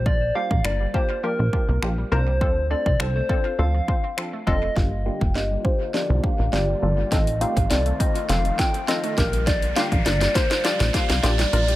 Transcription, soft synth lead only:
X:1
M:4/4
L:1/16
Q:1/4=102
K:Gm
V:1 name="Soft synth lead"
d2 f2 d2 c2 B6 c2- | c2 d d c c3 f6 e2 | z2 g2 e2 c2 d2 f2 d2 d2 | e2 f2 d2 e2 f2 g2 e2 B2 |
d2 f2 d2 c2 d2 f2 d2 d2 |]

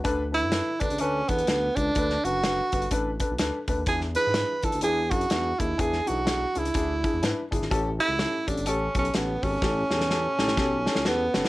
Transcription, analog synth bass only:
X:1
M:4/4
L:1/16
Q:"Swing" 1/4=125
K:Edor
V:1 name="Analog synth bass" clef=bass
D,,3 F,,2 z D,, C,, D,,2 E,,2 D,,2 C,,2 | D,,2 F,,,4 G,,,2 A,,,3 B,,, D,, z D,, _E,, | E,,3 ^G,,2 z E,, D,, E,,2 F,,2 E,,2 _E,,2 | E,,2 B,,,4 C,,2 D,,3 E,, ^G,, z =G,,, ^G,,, |
A,,,3 C,,2 z A,,, G,,, A,,,2 B,,,2 A,,,2 ^G,,,2 | A,,,2 E,,4 A,,,2 B,,,3 C,, E,,2 F,,, z |]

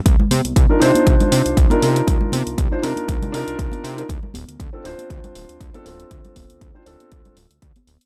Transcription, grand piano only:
X:1
M:4/4
L:1/16
Q:"Swing 16ths" 1/4=119
K:Cdor
V:1 name="Grand piano"
z4 z [DEFB] [DEFc]6- [DEFc] [DEFB] [DEFB]2- | [DEFB]4- [DEFB] [DEFc] [DEFB]4 [DEFB]4- [DEFB] [DEFB] | z4 z [CDFA] [CDFc]6- [CDFc] [CDFA] [CDFA]2- | [CDFA]4- [CDFA] [CDFc] [CDFA]4 z6 |]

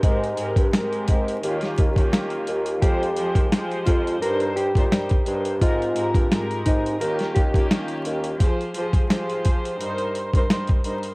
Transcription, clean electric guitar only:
X:1
M:4/4
L:1/8
Q:"Swing 16ths" 1/4=86
K:Fm
V:1 name="Clean electric guitar"
z8 | G3 F B G3 | F3 E B G z2 | z8 |]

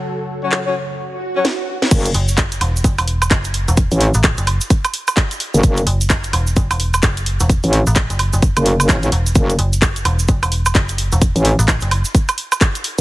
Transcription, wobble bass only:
X:1
M:4/4
L:1/16
Q:"Swing 16ths" 1/4=129
K:Emix
V:1 name="Wobble bass" clef=bass
z16 | F,,,2 z12 z2 | z A,,,2 z12 F,,, | F,,,2 z12 z2 |
z A,,,2 z6 F,,,3 A,,,2 z2 | F,,,2 z12 z2 | z A,,,2 z12 z |]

